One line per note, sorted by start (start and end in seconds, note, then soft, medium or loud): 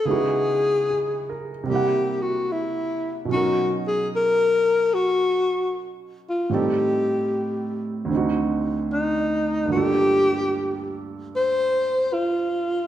0.05 1.66 C#3 soft
0.05 1.67 G#3 soft
0.05 1.68 B3 soft
0.05 1.68 D#4 soft
0.05 1.40 G#4 medium
0.10 1.69 E4 soft
0.10 1.69 F#4 medium
0.90 1.51 G#4 soft
1.29 1.84 A#4 soft
1.64 3.26 C3 soft
1.64 3.27 G3 soft
1.68 3.29 A#3 soft
1.68 2.24 G4 medium
1.72 3.30 E4 soft
1.72 3.32 F#5 medium
2.22 2.54 F#4 medium
2.52 3.17 E4 medium
3.25 6.48 B2 soft
3.25 6.49 F#3 soft
3.30 6.50 C#4 soft
3.30 6.51 D#4 soft
3.30 3.80 F#4 medium
3.36 6.53 A#4 soft
3.87 4.09 G#4 medium
4.16 4.95 A#4 loud
4.94 5.89 F#4 medium
6.29 6.55 F4 medium
6.50 8.10 A2 soft
6.50 8.11 G3 soft
6.50 8.09 C4 soft
6.50 8.12 D#4 soft
6.54 7.85 G4 medium
6.54 8.13 A4 medium
8.05 9.68 D2 soft
8.05 9.67 D3 soft
8.11 9.71 C4 soft
8.11 9.73 D#4 soft
8.17 9.74 F#4 medium
8.92 9.68 D#4 medium
9.65 12.87 G2 soft
9.65 12.87 D3 soft
9.71 12.87 A#3 soft
9.71 12.87 F4 soft
9.71 11.01 G4 loud
9.77 12.87 A4 soft
11.36 12.15 C5 loud
12.14 12.87 F4 medium